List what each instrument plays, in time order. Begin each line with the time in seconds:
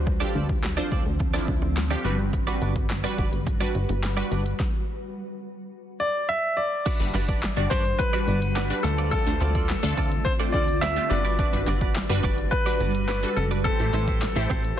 Already playing: analog synth bass D2, ambient pad D3 F3 C4, synth pluck F3 D4 C5
0.06 muted clean electric guitar stroke, kick
0.20 synth pluck F3 D4 G4, clean electric guitar C4 F4 A4 D5
0.34 analog synth bass D2, clean electric guitar C4 F4 A4 D5
0.49 muted clean electric guitar stroke, kick
0.63 muted clean electric guitar stroke, snare, clap
0.77 synth pluck F3 D4 C5, clean electric guitar C4 F4 A4 D5
0.91 analog synth bass D2, clean electric guitar C4 F4 A4 D5, kick
1.05 analog synth bass D2, muted clean electric guitar stroke
1.20 muted clean electric guitar stroke, kick
1.34 synth pluck F3 D4 E4, clean electric guitar C4 F4 A4 D5
1.48 analog synth bass D2, muted clean electric guitar stroke, kick
1.62 analog synth bass D2, muted clean electric guitar stroke
1.76 muted clean electric guitar stroke, snare, clap
1.90 synth pluck F3 D4 G4, clean electric guitar C4 F4 A4 D5
2.04 analog synth bass G1, synth pluck G3 F#4 B4, ambient pad G3 F#4 B4, clean electric guitar D4 F#4 B4 D5
2.19 muted clean electric guitar stroke
2.33 muted clean electric guitar stroke, kick, closed hi-hat
2.47 synth pluck G3 F#4 B4, clean electric guitar D4 F#4 B4 D5, closed hi-hat
2.61 analog synth bass G1, clean electric guitar D4 F#4 B4 D5, closed hi-hat
2.75 muted clean electric guitar stroke, kick, closed hi-hat
2.90 muted clean electric guitar stroke, snare, clap, closed hi-hat
3.04 synth pluck G3 F#4 B4, clean electric guitar D4 F#4 B4 D5, closed hi-hat
3.18 analog synth bass G1, clean electric guitar D4 F#4 B4 D5, kick, closed hi-hat
3.32 analog synth bass G1, muted clean electric guitar stroke, closed hi-hat
3.46 muted clean electric guitar stroke, kick, closed hi-hat
3.60 synth pluck G3 F#4 B4, clean electric guitar D4 F#4 B4 D5, closed hi-hat
3.75 analog synth bass G1, muted clean electric guitar stroke, closed hi-hat
3.89 analog synth bass G1, muted clean electric guitar stroke, closed hi-hat
4.03 muted clean electric guitar stroke, snare, clap, closed hi-hat
4.17 synth pluck G3 F#4 B4, clean electric guitar D4 F#4 B4 D5, closed hi-hat
4.31 analog synth bass G1, clean electric guitar D4 F#4 B4 D5, closed hi-hat
4.45 muted clean electric guitar stroke, closed hi-hat
4.60 kick, snare
6.00 grand piano D5
6.29 grand piano E5
6.57 grand piano D5
6.86 ambient pad G3 F#4 B4, clean electric guitar D4 F#4 B4 D5, kick, closed hi-hat, crash
7.00 analog synth bass G1, synth pluck G3 D4 F#4 B4, closed hi-hat
7.14 analog synth bass G1, clean electric guitar D4 F#4 B4 D5, clap, closed hi-hat
7.28 clean electric guitar D4 F#4 B4 D5, kick, closed hi-hat
7.42 muted clean electric guitar stroke, snare, clap, closed hi-hat
7.57 analog synth bass G1, synth pluck G3 D4 F#4 D5, muted clean electric guitar stroke, closed hi-hat
7.70 analog synth bass G1, clean electric guitar D4 F#4 B4 D5, grand piano C5, kick, closed hi-hat
7.85 muted clean electric guitar stroke, closed hi-hat
7.99 grand piano B4, muted clean electric guitar stroke, kick, closed hi-hat
8.13 synth pluck G3 D4 F#4 B4, clean electric guitar D4 F#4 B4 D5, closed hi-hat
8.27 analog synth bass G1, clean electric guitar D4 F#4 B4 D5, closed hi-hat
8.42 closed hi-hat
8.55 clean electric guitar D4 F#4 B4 D5, snare, clap, closed hi-hat
8.70 synth pluck G3 D4 F#4 B4, muted clean electric guitar stroke, closed hi-hat
8.83 analog synth bass D2, ambient pad D3 C4 F4, synth pluck A3 D4 F4 C5, grand piano A4, muted clean electric guitar stroke, closed hi-hat
8.98 clean electric guitar C4 F4 A4 D5, closed hi-hat
9.11 clean electric guitar C4 F4 A4 D5, grand piano A4, kick, closed hi-hat
9.26 analog synth bass D2, synth pluck A3 D4 F4 C5, closed hi-hat
9.41 analog synth bass D2, clean electric guitar C4 F4 A4 D5, clap, closed hi-hat
9.55 clean electric guitar C4 F4 A4 D5, kick, closed hi-hat
9.69 snare, clap, closed hi-hat
9.83 analog synth bass D2, synth pluck A3 D4 F4 A4, muted clean electric guitar stroke, closed hi-hat
9.97 analog synth bass D2, clean electric guitar C4 F4 A4 D5, kick, closed hi-hat
10.12 muted clean electric guitar stroke, closed hi-hat
10.25 grand piano C5, muted clean electric guitar stroke, kick, closed hi-hat
10.39 synth pluck A3 D4 F4 C5, clean electric guitar C4 F4 A4 D5, closed hi-hat
10.52 analog synth bass D2, clean electric guitar C4 F4 A4 D5, grand piano D5, kick, closed hi-hat
10.68 muted clean electric guitar stroke, closed hi-hat
10.81 clean electric guitar C4 F4 A4 D5, grand piano E5, snare, clap, closed hi-hat
10.96 synth pluck A3 D4 F4 G4, muted clean electric guitar stroke, closed hi-hat
11.10 analog synth bass G1, synth pluck G3 D4 F#4 B4, ambient pad G3 F#4 B4, grand piano D5, muted clean electric guitar stroke, closed hi-hat
11.25 clean electric guitar D4 F#4 B4 D5, closed hi-hat
11.39 clean electric guitar D4 F#4 B4 D5, kick, closed hi-hat
11.53 analog synth bass G1, synth pluck G3 D4 F#4 B4, closed hi-hat
11.67 analog synth bass G1, clean electric guitar D4 F#4 B4 D5, clap, closed hi-hat
11.81 clean electric guitar D4 F#4 B4 D5, kick, closed hi-hat
11.95 muted clean electric guitar stroke, snare, clap, closed hi-hat
12.09 analog synth bass G1, synth pluck G3 D4 F#4 B4, muted clean electric guitar stroke, closed hi-hat
12.23 analog synth bass G1, clean electric guitar D4 F#4 B4 D5, kick, closed hi-hat
12.38 muted clean electric guitar stroke, closed hi-hat
12.51 grand piano B4, muted clean electric guitar stroke, kick, closed hi-hat
12.66 synth pluck G3 D4 F#4 B4, clean electric guitar D4 F#4 B4 D5, closed hi-hat
12.80 analog synth bass G1, clean electric guitar D4 F#4 B4 D5, closed hi-hat
12.95 closed hi-hat
13.08 clean electric guitar D4 F#4 B4 D5, grand piano B4, snare, clap, closed hi-hat
13.23 synth pluck G3 D4 F#4 A4, muted clean electric guitar stroke, closed hi-hat
13.36 analog synth bass F#1, grand piano A4, muted clean electric guitar stroke, closed hi-hat
13.51 clean electric guitar D4 F#4 B4 D5, closed hi-hat
13.64 ambient pad A3 C4 G4, clean electric guitar C4 E4 G4 C5, grand piano A4, kick, closed hi-hat
13.79 analog synth bass A1, synth pluck A3 E4 G4 C5, closed hi-hat
13.93 analog synth bass A1, clean electric guitar C4 E4 G4 C5, clap, closed hi-hat
14.07 clean electric guitar C4 E4 G4 C5, kick, closed hi-hat
14.22 snare, clap, closed hi-hat
14.36 analog synth bass A1, synth pluck A3 E4 G4 C5, muted clean electric guitar stroke, closed hi-hat
14.50 analog synth bass A1, clean electric guitar C4 E4 G4 C5, kick, closed hi-hat
14.64 muted clean electric guitar stroke, closed hi-hat